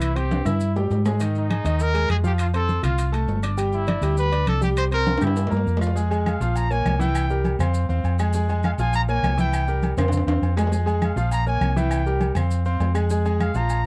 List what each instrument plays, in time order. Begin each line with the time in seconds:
Already playing: fingered electric bass C2, grand piano E3 E4 E5
0.01 trumpet E4, high conga, high timbale, claves, maracas
0.15 grand piano C4 C5 C6, trumpet G4, high conga, high timbale, maracas
0.31 high conga, high timbale, maracas
0.45 fingered electric bass G2, grand piano E4 E5 E6, trumpet E4, high conga, low conga, high timbale, claves, maracas
0.61 high conga, maracas
0.76 grand piano G3 G4 G5, high conga, low timbale, maracas
0.90 fingered electric bass G#2, high conga, low timbale, maracas
1.06 grand piano G#3 G#4 G#5, high conga, low timbale, claves, maracas
1.20 grand piano D#3 D#4 D#5, high conga, high timbale, maracas
1.35 trumpet D#4, high conga, maracas
1.49 grand piano G#3 G#4 G#5, high conga, high timbale, claves, maracas
1.64 fingered electric bass D#2, grand piano D#3 D#4 D#5, high conga, high timbale, maracas
1.80 trumpet A#4, high conga, maracas
1.94 grand piano G#3 G#4 G#5, high conga, high timbale, maracas
2.09 fingered electric bass F2, trumpet G#4, high conga, high timbale, claves, maracas
2.23 grand piano F3 F4 F5, trumpet G4, high conga, maracas
2.38 trumpet F4, high conga, high timbale, claves, maracas
2.54 grand piano C4 C5 C6, trumpet A4, high conga, high timbale, maracas
2.69 high conga, maracas
2.83 fingered electric bass C2, grand piano F4 F5 F6, trumpet F4, high conga, low conga, high timbale, claves, maracas
2.98 high conga, high timbale, maracas
3.12 grand piano A3 A4 A5, high conga, high timbale, maracas
3.27 fingered electric bass G1, high conga, low timbale, maracas
3.43 grand piano D4 D5 D6, high conga, high timbale, claves, maracas
3.57 grand piano G3 G4 G5, high conga, high timbale, maracas
3.72 trumpet E4, high conga, maracas
3.87 grand piano D4 D5 D6, high conga, high timbale, claves, maracas
4.01 fingered electric bass D2, grand piano G3 G4 G5, high conga, high timbale, maracas
4.17 trumpet B4, high conga, maracas
4.32 grand piano D4 D5 D6, high conga, high timbale, maracas
4.47 fingered electric bass C2, trumpet A4, high conga, high timbale, claves, maracas
4.61 grand piano G3 G4 G5, trumpet G4, high conga, maracas
4.77 trumpet C5, high conga, high timbale, claves, maracas
4.91 grand piano C4 C5 C6, trumpet A#4, high conga, high timbale, maracas
5.07 high conga, high timbale, maracas
5.18 fingered electric bass G2, grand piano G4 G5 G6, high timbale, maracas
5.22 trumpet E4, high conga, low conga, claves
5.27 high timbale
5.36 high conga, high timbale, maracas
5.47 grand piano A#3 A#4, low timbale
5.51 fingered electric bass G2, grand piano A#5, high conga, maracas
5.57 low timbale
5.66 fingered electric bass F2, high conga, maracas
5.77 grand piano F4, low timbale
5.81 grand piano F5 F6, high conga, claves, maracas
5.87 low timbale
5.96 grand piano G#3 G#4 G#5, high conga, maracas
6.10 grand piano G#3 G#4 G#5, high conga, low agogo, maracas
6.26 trumpet F5, high conga, low agogo, claves, maracas
6.40 fingered electric bass A#1, grand piano F3 F4 F5, high conga, maracas
6.56 trumpet A#5, high conga, low agogo, maracas
6.70 grand piano A#3 A#4 C#5, trumpet G#5, high conga, maracas
6.85 fingered electric bass C2, high conga, low timbale, low agogo, claves, maracas
6.99 grand piano E3 E4 E5, trumpet G5, high conga, maracas
7.15 high conga, low agogo, claves, maracas
7.30 grand piano G3 G4 A#4, high conga, maracas
7.45 high conga, low agogo, maracas
7.59 fingered electric bass F2, grand piano C4 C5 F5, high conga, low conga, low agogo, claves, maracas
7.74 high conga, maracas
7.89 fingered electric bass E2, grand piano C4 C5 F5, high conga, maracas
8.04 fingered electric bass F2, high conga, low agogo, maracas
8.19 grand piano G#3 G#4 G#5, high conga, low agogo, claves, maracas
8.33 grand piano G#3 G#4 G#5, high conga, maracas
8.49 grand piano G#3 G#4 G#5, high conga, low agogo, maracas
8.63 trumpet F5, high conga, low agogo, claves, maracas
8.78 fingered electric bass A#1, grand piano F3 F4 F5, trumpet G#5, high conga, maracas
8.93 trumpet A#5, high conga, low agogo, maracas
9.08 grand piano A#3 A#4 C#5, trumpet G#5, high conga, maracas
9.23 fingered electric bass C2, high conga, low timbale, low agogo, claves, maracas
9.37 grand piano E3 E4 E5, trumpet G5, high conga, maracas
9.53 high conga, low agogo, claves, maracas
9.68 grand piano G3 G4 A#4, high conga, maracas
9.83 high conga, low agogo, maracas
9.97 fingered electric bass F2, grand piano C4 C5 F5, high conga, low conga, high timbale, low agogo, claves, maracas
10.08 high timbale
10.12 high conga, low conga, maracas
10.17 high timbale
10.27 fingered electric bass E2, grand piano C4 C5 F5, high conga, high timbale, maracas
10.42 fingered electric bass F2, high conga, low agogo, maracas
10.57 grand piano G#3 G#4 G#5, high conga, low timbale, low agogo, claves, maracas
10.67 low timbale
10.72 grand piano G#3 G#4 G#5, high conga, maracas
10.86 grand piano G#3 G#4 G#5, high conga, low agogo, maracas
11.02 trumpet F5, high conga, low agogo, claves, maracas
11.16 fingered electric bass A#1, grand piano F3 F4 F5, high conga, maracas
11.32 trumpet A#5, high conga, low agogo, maracas
11.46 grand piano A#3 A#4 C#5, trumpet G#5, high conga, maracas
11.61 fingered electric bass C2, high conga, low agogo, claves, maracas
11.76 grand piano E3 E4 E5, trumpet G5, high conga, maracas
11.91 low agogo, claves, maracas
12.06 grand piano G3 G4 A#4, high conga, maracas
12.21 high conga, low agogo, maracas
12.35 fingered electric bass F2, grand piano C4 C5 F5, high conga, low conga, low agogo, claves, maracas
12.51 high conga, maracas
12.65 grand piano C4 C5 F5, high conga, maracas
12.80 fingered electric bass F2, high conga, low timbale, low agogo, maracas
12.94 grand piano G#3 G#4 G#5, high conga, low agogo, claves, maracas
13.10 grand piano G#3 G#4 G#5, high conga, maracas
13.25 grand piano G#3 G#4 G#5, high conga, low agogo, maracas
13.40 trumpet F5, high conga, low agogo, claves, maracas
13.54 fingered electric bass A#1, grand piano F3 F4 F5, trumpet A#5, high conga, maracas
13.69 high conga, low agogo, maracas